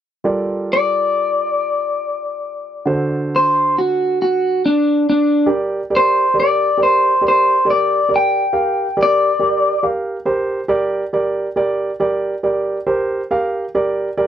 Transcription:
0.24 2.82 G3 soft
0.24 2.82 F4 soft
0.24 2.82 A4 soft
0.24 2.82 A#4 soft
0.24 2.82 D5 medium
0.73 3.28 D5 medium
2.86 5.43 D3 medium
2.86 5.44 F#4 soft
2.86 5.44 A4 soft
2.86 5.44 C5 medium
3.36 3.75 C5 medium
3.78 4.18 F#4 medium
4.22 4.62 F#4 medium
4.66 5.05 D4 medium
5.10 5.49 D4 medium
5.46 5.80 G4 medium
5.46 5.80 A#4 soft
5.46 5.80 D5 medium
5.90 6.24 G4 medium
5.90 6.24 A#4 soft
5.90 6.24 D5 medium
5.96 6.36 C5 medium
6.34 6.67 G4 soft
6.34 6.67 A#4 soft
6.34 6.67 D5 medium
6.40 6.80 D5 medium
6.78 7.11 G4 soft
6.78 7.11 A#4 soft
6.78 7.11 D5 soft
6.83 7.23 C5 medium
7.21 7.54 G4 soft
7.21 7.54 A#4 soft
7.21 7.55 D5 soft
7.28 7.68 C5 medium
7.65 7.98 G4 soft
7.65 7.98 A#4 soft
7.65 7.99 D5 medium
7.70 8.10 D5 medium
8.09 8.42 G4 soft
8.09 8.42 A#4 soft
8.09 8.42 D5 medium
8.16 8.97 G5 medium
8.53 8.85 G4 soft
8.53 8.85 A#4 soft
8.53 8.86 F5 medium
8.97 9.29 G4 medium
8.97 9.29 A#4 soft
8.97 9.29 D5 medium
9.03 9.84 D5 medium
9.39 9.72 G4 medium
9.39 9.72 A#4 soft
9.39 9.73 D5 medium
9.83 10.16 G4 soft
9.83 10.16 A#4 soft
9.83 10.16 F5 medium
10.25 10.59 G4 medium
10.25 10.59 A#4 soft
10.25 10.59 C5 medium
10.68 11.02 G4 medium
10.68 11.02 A#4 medium
10.68 11.02 D5 medium
11.13 11.46 G4 medium
11.13 11.46 A#4 medium
11.13 11.46 D5 medium
11.56 11.89 G4 medium
11.56 11.89 A#4 medium
11.56 11.90 D5 medium
12.00 12.33 G4 medium
12.00 12.33 A#4 medium
12.00 12.33 D5 medium
12.43 12.77 G4 medium
12.43 12.77 A#4 soft
12.43 12.77 D5 medium
12.87 13.20 G4 medium
12.87 13.20 A#4 medium
12.87 13.20 C5 medium
13.31 13.64 G4 medium
13.31 13.64 A#4 soft
13.31 13.64 F5 medium
13.75 14.08 G4 medium
13.75 14.08 A#4 medium
13.75 14.08 D5 medium
14.17 14.27 G4 medium
14.17 14.27 A#4 medium
14.17 14.27 D5 medium

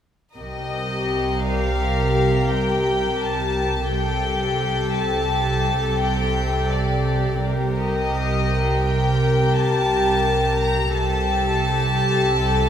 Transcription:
0.37 3.86 C2 soft
0.37 3.87 C3 soft
0.37 3.87 G4 soft
0.37 3.86 A#4 soft
0.37 3.87 A#4 soft
0.37 1.39 D#5 soft
0.37 3.87 G5 soft
1.43 3.51 D5 soft
1.43 2.50 F5 soft
2.49 3.20 G5 soft
3.21 3.91 A5 soft
3.90 7.39 C2 soft
3.90 7.40 C3 soft
3.90 7.39 G4 soft
3.90 7.40 G4 soft
3.90 7.43 A4 soft
3.90 7.40 A4 soft
3.90 4.94 G5 soft
3.90 7.40 G5 soft
4.62 6.70 G5 soft
4.96 6.02 A5 soft
6.02 6.72 G5 medium
6.73 7.44 D5 soft
7.43 10.92 C2 soft
7.43 10.93 C3 soft
7.43 10.93 G4 soft
7.43 10.93 A#4 soft
7.43 10.97 A#4 soft
7.43 10.93 G5 soft
7.79 8.81 D#5 medium
8.85 9.56 G5 soft
9.20 11.28 G5 soft
9.55 10.61 A5 medium
10.61 10.96 A#5 soft
10.96 12.69 C2 soft
10.96 12.69 C3 soft
10.96 12.69 G4 soft
10.96 12.69 A4 soft
10.96 12.69 G5 soft
10.96 12.69 A5 medium

